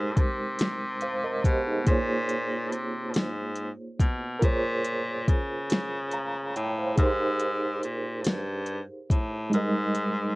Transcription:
Already playing: baritone saxophone G#2, reed electric piano G#3 D#4 G4 A#4 C5
0.17 baritone saxophone C3, kick, closed hi-hat
0.59 snare, closed hi-hat
1.01 reed electric piano C5 F5, closed hi-hat
1.24 reed electric piano A#4 D#5
1.44 baritone saxophone B2, reed electric piano G4 C5, kick, closed hi-hat
1.67 reed electric piano D#4 G#4
1.84 baritone saxophone A#2, reed electric piano A#3 F4 G#4, kick, closed hi-hat
1.90 reed electric piano C5 C#5
2.29 closed hi-hat
2.72 baritone saxophone C3, closed hi-hat
3.14 baritone saxophone G#2, snare, closed hi-hat
3.55 closed hi-hat
3.99 baritone saxophone B2, kick, closed hi-hat
4.39 baritone saxophone A#2, reed electric piano F4 A#4, kick, closed hi-hat
4.43 reed electric piano G#4 C#5
4.84 closed hi-hat
5.28 baritone saxophone C#3, kick, closed hi-hat
5.70 snare, closed hi-hat
6.12 reed electric piano F5 A#5, closed hi-hat
6.56 baritone saxophone A2, reed electric piano C#5 G5, closed hi-hat
6.78 reed electric piano C5 F5
6.96 baritone saxophone G#2, reed electric piano D#4 G4 G#4, kick, closed hi-hat
7.01 reed electric piano A#4 C5
7.40 closed hi-hat
7.83 baritone saxophone A#2, closed hi-hat
8.25 baritone saxophone G2, snare, closed hi-hat
8.66 closed hi-hat
9.10 baritone saxophone A2, kick, closed hi-hat
9.50 reed electric piano G3 G#3 D#4, closed hi-hat
9.54 baritone saxophone G#2, reed electric piano A#4 D#5
9.95 closed hi-hat

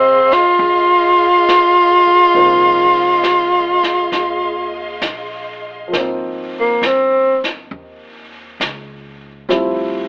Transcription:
Already playing: upright bass G#1, grand piano F3 A#3 D#4 C5, tenor saxophone C4, string section G#4 D#5 F5 C6
0.31 tenor saxophone F4, snare
0.59 upright bass D#2, brush sweep
1.49 snare, hi-hat pedal
2.07 muted upright bass stroke
2.35 upright bass C2, grand piano F3 A#3 C4 D#4, brush sweep
3.24 snare, hi-hat pedal
3.83 snare
4.12 upright bass D#2, brush sweep, snare
5.02 upright bass A#1, snare, hi-hat pedal
5.88 grand piano F3
5.92 upright bass G#1, grand piano A#3 C4, brush sweep, snare
6.00 grand piano D#4
6.60 tenor saxophone A#3
6.82 upright bass G1, snare, hi-hat pedal
6.87 tenor saxophone C4
7.44 snare
7.71 upright bass D#2, brush sweep
8.60 upright bass C#2, snare, hi-hat pedal
9.49 upright bass D2, grand piano F3 G3 C4 E4, brush sweep, snare

